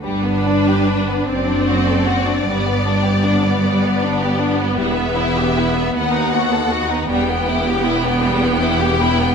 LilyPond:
<<
  \new Staff \with { instrumentName = "Violin section" } { \time 6/8 \key g \major \tempo 4. = 52 b'4. d''4.~ | d''2. | e''4. fis''4. | g''2. | }
  \new Staff \with { instrumentName = "Violin section" } { \time 6/8 \key g \major g16 b16 d'16 g'16 d'16 b16 c'16 d'16 fis'16 a'16 fis'16 d'16 | g16 b16 d'16 g'16 d'16 b16 g16 b16 d'16 g'16 d'16 b16 | g16 b16 e'16 g'16 e'16 b16 b16 dis'16 fis'16 a'16 fis'16 dis'16 | g16 b16 e'16 g'16 e'16 b16 g16 b16 e'16 g'16 e'16 b16 | }
  \new Staff \with { instrumentName = "Viola section" } { \time 6/8 \key g \major d'4. c'4. | b2.~ | b2. | b2. | }
  \new Staff \with { instrumentName = "Cello section" } { \clef bass \time 6/8 \key g \major g,4. fis,4. | g,2. | e,4. dis,4. | e,2. | }
  \new Staff \with { instrumentName = "Double bass section" } { \clef bass \time 6/8 \key g \major g,,4. fis,,4. | g,,2. | e,,4. dis,4. | e,,2. | }
>>